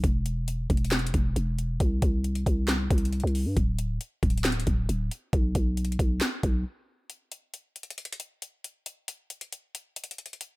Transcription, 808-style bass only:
\new Staff \with { instrumentName = "808-style bass" } { \clef bass \time 4/4 \key c \lydian \tempo 4 = 136 e,,4. e,,4 e,,8 e,,4 | c,8 c,4 c,4 c,8. c,8 g,16 | d,,4 r8 d,,4 d,,8 d,,8 r8 | b,,8 b,,4 b,,8 r8 b,,8 r4 |
r1 | r1 | }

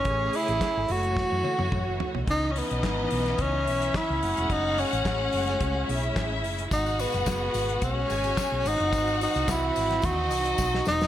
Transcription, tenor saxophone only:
\new Staff \with { instrumentName = "Tenor saxophone" } { \time 4/4 \key fis \dorian \tempo 4 = 108 cis'8 e'4 fis'2 r8 | dis'16. cis'32 b4. cis'4 e'4 | dis'8 cis'2. r8 | dis'8 b4. cis'4. dis'8~ |
dis'8 dis'8 e'4 fis'4. dis'8 | }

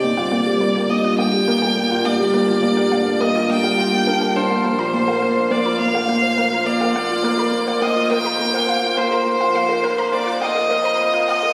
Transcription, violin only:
\new Staff \with { instrumentName = "Violin" } { \time 4/4 \key g \phrygian \tempo 4 = 104 d''4. ees''8 g''4. d''8~ | d''4. ees''8 g''4. c''8~ | c''4. d''8 f''4. d''8~ | d''4. ees''8 g''4. c''8~ |
c''4. d''8 ees''4. ees''8 | }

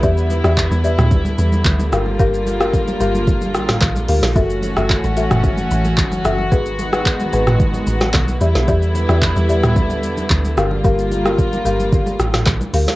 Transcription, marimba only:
\new Staff \with { instrumentName = "Marimba" } { \time 4/4 \key g \lydian \tempo 4 = 111 <g' d'' e''>16 r8 <g' d'' e''>16 r8 <g' d'' e''>16 r4. r16 <g' bes' f''>16 r16 | <g' bes' f''>16 r8 <g' bes' f''>16 r8 <g' bes' f''>16 r4. r16 <g' bes' f''>16 r16 | <fis' a' e''>16 r8 <fis' a' e''>16 r8 <fis' a' e''>16 r4. r16 <fis' a' e''>16 r16 | <gis' b' fis''>16 r8 <gis' b' fis''>16 r8 <gis' b' fis''>16 r4. r16 <g' d'' e''>16 r16 |
<g' d'' e''>16 r8 <g' d'' e''>16 r8 <g' d'' e''>16 r4. r16 <g' bes' f''>16 r16 | <g' bes' f''>16 r8 <g' bes' f''>16 r8 <g' bes' f''>16 r4. r16 <g' bes' f''>16 r16 | }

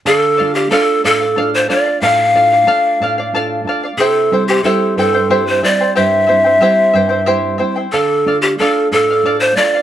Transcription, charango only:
\new Staff \with { instrumentName = "Charango" } { \time 6/8 \key d \minor \tempo 4. = 61 <a' d'' f''>8 <a' d'' f''>16 <d'' f''>16 <a' d'' f''>8 <a' d'' f''>16 <d'' f''>16 <a' d'' f''>8 <a' d'' f''>16 <d'' f''>16 | <a' d'' f''>8 <a' d'' f''>16 <d'' f''>16 <a' d'' f''>8 <a' d'' f''>16 <d'' f''>16 <a' d'' f''>8 <a' d'' f''>16 <d'' f''>16 | <e' g' c'' e'' g''>8 <e' c'' e'' g''>16 <e' c'' g''>16 <e' g' c'' e'' g''>8 <e' c'' e'' g''>16 <e' c'' g''>16 <e' g' c'' e'' g''>8 <e' c'' e'' g''>16 <e' c'' g''>16 | <e' g' c'' e'' g''>8 <e' c'' e'' g''>16 <e' c'' g''>16 <e' g' c'' e'' g''>8 <e' c'' e'' g''>16 <e' c'' g''>16 <e' g' c'' e'' g''>8 <e' c'' e'' g''>16 <e' c'' g''>16 |
<a' d'' f''>8 <a' d'' f''>16 <d'' f''>16 <a' d'' f''>8 <a' d'' f''>16 <d'' f''>16 <a' d'' f''>8 <a' d'' f''>16 <d'' f''>16 | }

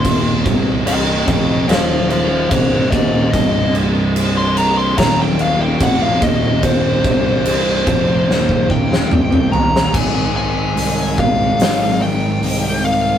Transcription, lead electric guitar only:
\new Staff \with { instrumentName = "Lead electric guitar" } { \time 4/4 \key c \minor \tempo 4 = 73 << { r4 ees''8 ees''8 c''8 c''8 c''8 c''8 | r1 | r2 r8 g''4 bes''8 | aes''8 aes''4 f''4 g''4 f''8 | } \\ { c'''8 r8 g''8 g''8 f''8 f''8 ees''8 ees''8 | ees''8 r8. c'''16 bes''16 c'''16 bes''16 g''16 f''16 g''16 fis''16 f''16 ees''8 | c''2. r4 | r1 | } >> }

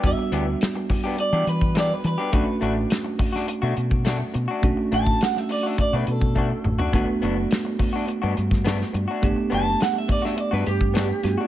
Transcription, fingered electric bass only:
\new Staff \with { instrumentName = "Fingered electric bass" } { \clef bass \time 4/4 \key b \minor \tempo 4 = 104 e,16 r16 d,8 r4 r16 e16 e4 e16 r16 | b,,16 r16 a,,8 r4 r16 b,16 b,4 b,16 r16 | b,,16 r16 a,,8 r4 r16 b,16 b,4 a,,16 r16 | g,,16 r16 fis,,8 r4 r16 g,16 g,4 g,16 r16 |
g,,16 r16 fis,,8 r4 r16 g,16 g,4 g,16 r16 | }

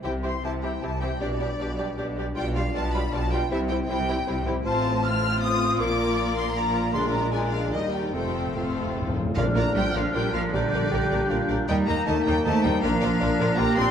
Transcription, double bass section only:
\new Staff \with { instrumentName = "Double bass section" } { \clef bass \time 3/4 \key c \major \tempo 4 = 156 c,4 c,4 c,4 | b,,4 b,,4 b,,4 | b,,4 b,,4 b,,4 | c,4 c,4 c,4 |
\key bes \major a,,2. | bes,,2.~ | bes,,2 ees,4 | f,,2~ f,,8 r8 |
bes,,8 bes,,8 bes,,8 bes,,8 bes,,8 bes,,8 | bes,,8 bes,,8 bes,,8 bes,,8 bes,,8 bes,,8 | ees,8 ees,8 ees,8 ees,8 ees,8 ees,8 | bes,,8 bes,,8 bes,,8 bes,,8 bes,,8 bes,,8 | }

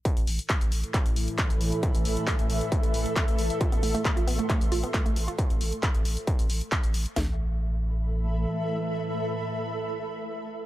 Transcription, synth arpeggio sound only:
\new Staff \with { instrumentName = "Synth arpeggio sound" } { \time 4/4 \key a \minor \tempo 4 = 135 r1 | r1 | f'16 b16 a16 a16 r16 f'16 b16 a16 a16 r16 f'16 b16 a16 a16 r16 f'16 | r1 |
a8 r2. r8 | r1 | }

